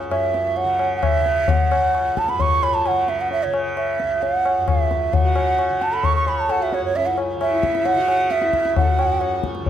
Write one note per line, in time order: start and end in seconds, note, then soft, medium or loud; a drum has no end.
0.00 1.76 C#2 medium
0.00 0.09 F#2 medium
0.00 0.64 C#3 medium
0.09 2.33 F#2 medium
0.09 0.58 E5 medium
0.09 tabla na medium
0.34 tabla te medium
0.57 0.96 F#5 loud
0.57 tabla tin medium
0.64 1.20 C#3 medium
0.79 tabla na medium
0.97 1.04 F#5 medium
1.03 1.51 E5 loud
1.03 tabla na medium
1.03 tabla ge medium
1.20 2.89 C#3 medium
1.26 tabla te medium
1.48 2.19 F#5 loud
1.48 tabla tin loud
1.48 tabla ge loud
1.72 tabla na loud
1.77 4.01 C#2 medium
1.95 tabla na medium
2.17 2.31 A5 loud
2.17 tabla ke medium
2.28 2.42 B5 loud
2.28 tabla te medium
2.33 4.58 F#2 medium
2.39 2.65 C#6 loud
2.39 tabla tin medium
2.39 tabla ge medium
2.63 2.76 B5 loud
2.63 tabla na medium
2.74 2.89 A5 loud
2.86 3.45 C#3 medium
2.86 3.11 F#5 loud
2.86 tabla na medium
3.08 3.22 E5 medium
3.08 tabla te medium
3.21 3.32 F#5 medium
3.31 3.45 E5 loud
3.31 tabla tin medium
3.43 5.14 C#3 medium
3.43 3.54 C#5 medium
3.54 tabla na medium
3.77 4.24 E5 medium
3.77 tabla na medium
4.00 6.24 C#2 medium
4.00 tabla te medium
4.22 4.70 F#5 loud
4.22 tabla tin medium
4.45 tabla na medium
4.58 6.81 F#2 medium
4.68 5.15 E5 medium
4.68 tabla na medium
4.68 tabla ge medium
4.91 tabla te medium
5.13 5.69 C#3 medium
5.13 5.84 F#5 loud
5.13 tabla tin loud
5.13 tabla ge loud
5.23 5.94 F#4 medium
5.36 tabla na medium
5.59 tabla na medium
5.69 7.36 C#3 medium
5.81 5.95 A5 loud
5.81 tabla te medium
5.91 6.15 A4 medium
5.91 6.06 B5 loud
6.03 6.16 C#6 loud
6.03 tabla tin medium
6.03 tabla ge medium
6.14 6.25 C#5 medium
6.14 6.30 C#6 loud
6.25 8.47 C#2 medium
6.25 6.50 C#5 medium
6.25 6.41 B5 loud
6.25 tabla na medium
6.40 6.52 A5 loud
6.49 6.61 A4 medium
6.49 6.64 F#5 loud
6.49 tabla na medium
6.60 6.92 F#4 medium
6.60 6.75 E5 medium
6.72 6.84 C#5 medium
6.72 tabla te medium
6.81 9.03 F#2 medium
6.81 6.97 C#5 loud
6.94 7.06 C#4 medium
6.94 7.08 E5 loud
6.94 tabla tin medium
7.06 7.27 E4 medium
7.06 7.17 F#5 medium
7.18 tabla na medium
7.36 7.93 C#3 medium
7.41 7.88 E5 loud
7.41 tabla na medium
7.51 7.98 E4 medium
7.63 tabla ke medium
7.75 tabla te medium
7.85 8.33 F#5 loud
7.85 tabla tin medium
7.93 9.60 C#3 medium
7.93 8.44 F#4 medium
8.08 tabla na medium
8.30 8.76 E5 loud
8.30 tabla te medium
8.42 8.82 E4 medium
8.42 tabla te medium
8.47 9.70 C#2 medium
8.53 tabla ke medium
8.65 tabla te medium
8.76 9.41 F#5 loud
8.76 tabla tin loud
8.76 tabla ge loud
8.81 8.87 A4 medium
8.87 9.51 F#4 medium
8.99 tabla na medium
9.04 9.70 F#2 medium
9.21 tabla na medium
9.44 tabla ke medium
9.55 tabla te medium
9.60 9.70 C#3 medium
9.66 tabla tin medium
9.66 tabla ge medium